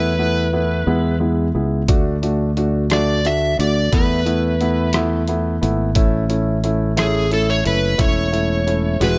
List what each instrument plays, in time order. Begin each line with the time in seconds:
Already playing: fingered electric bass E2, upright piano A3 B3 E4, electric slide guitar B4
0.19 upright piano A3 B3 E4
0.53 upright piano A3 B3 E4
0.87 fingered electric bass E2, upright piano G#3 B3 E4
1.20 upright piano G#3 B3 E4
1.55 fingered electric bass C#2, upright piano G#3 B3 E4
1.88 fingered electric bass D2, upright piano A3 D4 F#4, kick, closed hi-hat
2.22 upright piano A3 D4 F#4, closed hi-hat
2.57 upright piano A3 D4 F#4, closed hi-hat
2.90 upright piano A3 D4 F#4, electric slide guitar D5, cross-stick, closed hi-hat
3.25 upright piano A3 D4 F#4, electric slide guitar E5, closed hi-hat
3.59 fingered electric bass D2, upright piano A3 D4 F#4, electric slide guitar D5, closed hi-hat
3.92 fingered electric bass E2, upright piano A3 B3 E4, electric slide guitar B4, kick, closed hi-hat
4.25 upright piano A3 B3 E4, closed hi-hat
4.61 upright piano A3 B3 E4, closed hi-hat
4.93 upright piano A3 B3 E4, cross-stick, closed hi-hat
5.28 upright piano A3 B3 E4, closed hi-hat
5.61 fingered electric bass G#1, upright piano A3 B3 E4, closed hi-hat
5.95 fingered electric bass A1, upright piano A3 C#4 E4, kick, closed hi-hat
6.29 upright piano A3 C#4 E4, closed hi-hat
6.64 upright piano A3 C#4 E4, closed hi-hat
6.97 upright piano A3 C#4 E4, electric slide guitar G#4, cross-stick, closed hi-hat
7.31 upright piano A3 C#4 E4, electric slide guitar A4, closed hi-hat
7.50 electric slide guitar C#5
7.64 fingered electric bass F#1, upright piano A3 C#4 E4, electric slide guitar B4, closed hi-hat
7.98 fingered electric bass E1, upright piano A3 C#4 E4, electric slide guitar C#5, kick, closed hi-hat
8.32 upright piano A3 C#4 E4, closed hi-hat
8.67 upright piano A3 C#4 E4, closed hi-hat
9.00 fingered electric bass E1, upright piano G#3 E4 F#4, electric slide guitar B4, snare, closed hi-hat